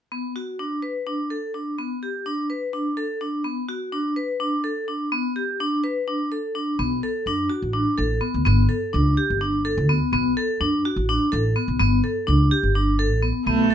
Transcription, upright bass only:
6.79 6.99 B1 medium
7.26 7.47 F#2 medium
7.62 7.83 A1 medium
7.98 8.19 A1 medium
8.34 8.44 D2 medium
8.46 8.67 G1 medium
8.94 9.14 C#2 medium
9.30 9.79 G1 medium
9.77 9.98 D2 medium
10.12 10.33 B1 medium
10.60 10.81 F#2 medium
10.96 11.17 A1 medium
11.33 11.53 A1 medium
11.68 11.78 B1 medium
11.80 12.00 G1 medium
12.28 12.48 C#2 medium
12.63 13.10 G1 medium
13.10 13.31 A1 medium
13.46 13.67 B1 medium

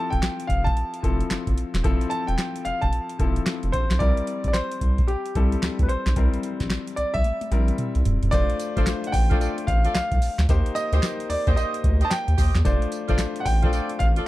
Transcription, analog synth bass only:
0.13 0.20 E1 medium
0.49 0.69 F1 loud
1.03 1.23 F1 medium
1.30 1.37 G1 soft
1.47 1.54 G1 medium
1.74 1.82 E1 loud
1.84 1.97 F1 loud
2.29 2.36 E1 loud
2.66 2.72 F1 medium
2.83 2.90 F1 medium
3.19 3.39 E1 medium
3.64 3.71 F1 medium
3.74 3.86 A#1 medium
3.91 3.98 B1 medium
4.00 4.13 C2 loud
4.45 4.52 A#1 loud
4.81 5.01 C2 medium
5.35 5.55 C2 medium
5.63 5.70 D2 soft
5.79 5.87 D2 medium
6.06 6.14 B1 medium
6.16 6.29 C2 loud
6.60 6.68 A#1 medium
6.98 7.05 C2 medium
7.15 7.22 C2 medium
7.51 7.71 A#1 medium
7.96 8.03 C2 medium
8.06 8.18 D#1 medium
8.23 8.30 E1 medium
8.33 8.45 F1 loud
8.77 8.84 G1 loud
9.14 9.33 A1 medium
9.68 9.88 A1 loud
9.95 10.02 C2 medium
10.12 10.19 C2 medium
10.39 10.46 D2 medium
10.49 10.61 D#2 loud
10.93 11.00 D2 loud
11.30 11.37 D#2 soft
11.47 11.54 D#2 medium
11.84 12.04 D2 loud
12.28 12.35 D#2 medium
12.38 12.51 D#2 medium
12.55 12.62 E2 loud
12.65 12.77 F1 loud
13.09 13.16 G1 loud
13.46 13.66 A1 loud
14.00 14.20 A1 loud

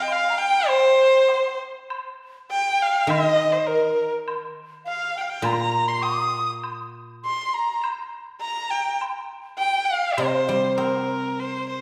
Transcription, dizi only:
0.11 0.31 F5 medium
0.30 0.40 A#5 medium
0.38 0.68 G5 loud
0.69 1.56 C5 medium
2.50 3.12 G5 medium
3.11 3.69 D#5 medium
3.68 4.12 A#4 medium
4.85 5.17 F5 medium
5.16 5.29 G5 medium
5.30 5.47 G5 medium
5.46 5.52 A#5 medium
5.51 5.59 C6 medium
5.57 5.89 A#5 medium
5.87 6.05 C6 medium
6.04 6.49 D#6 medium
7.24 7.55 C6 medium
7.54 7.84 A#5 medium
8.43 8.97 A#5 medium
9.60 9.87 G5 medium
9.90 10.21 F5 medium
10.19 10.29 C5 medium
10.27 10.36 D#5 medium
10.34 11.09 C5 medium

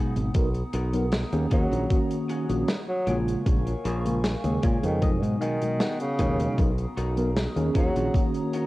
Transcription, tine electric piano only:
0.00 0.30 B2 medium
0.00 0.30 F#3 medium
0.00 0.31 G#3 medium
0.00 0.31 D#4 medium
0.34 0.46 F#3 medium
0.34 0.46 B3 medium
0.34 0.46 D#4 medium
0.34 0.47 A#4 medium
0.93 1.04 F#3 medium
0.93 1.04 B3 medium
0.93 1.04 D#4 medium
0.93 1.05 A#4 medium
1.32 1.86 D#3 loud
1.32 1.86 A#3 medium
1.32 1.86 C#4 medium
1.32 1.87 G#4 loud
1.90 2.45 D#3 medium
1.90 2.45 A#3 medium
1.90 2.45 C#4 medium
1.90 2.46 F#4 loud
2.49 2.66 D#3 medium
2.49 2.66 A#3 medium
2.49 2.66 C#4 medium
2.49 2.67 F#4 medium
3.07 3.42 C#3 medium
3.07 3.42 G#3 medium
3.07 3.42 A#3 medium
3.07 3.42 F4 medium
3.45 3.57 C#3 medium
3.45 3.58 G#3 medium
3.45 3.58 A#3 medium
3.45 3.58 F4 medium
4.05 4.16 C#3 medium
4.05 4.16 G#3 medium
4.05 4.16 A#3 medium
4.05 4.17 F4 medium
4.44 4.98 C#3 loud
4.44 4.98 G#3 medium
4.44 4.98 A#3 medium
4.44 4.98 G#4 loud
5.01 5.56 B2 medium
5.01 5.57 F#3 medium
5.01 5.57 G#3 medium
5.01 5.57 D#4 loud
5.61 5.78 B2 medium
5.61 5.78 F#3 medium
5.61 5.78 G#3 medium
5.61 5.79 D#4 medium
6.19 6.54 B2 medium
6.19 6.54 F#3 medium
6.19 6.54 G#3 medium
6.19 6.54 D#4 medium
6.57 6.69 F#3 medium
6.57 6.69 B3 medium
6.57 6.69 D#4 medium
6.57 6.70 A#4 medium
7.17 7.28 F#3 medium
7.17 7.28 B3 medium
7.17 7.28 D#4 medium
7.17 7.28 A#4 medium
7.56 8.09 D#3 loud
7.56 8.10 A#3 medium
7.56 8.10 C#4 medium
7.56 8.10 G#4 loud
8.14 8.67 D#3 medium
8.14 8.67 A#3 medium
8.14 8.67 C#4 medium
8.14 8.67 F#4 loud

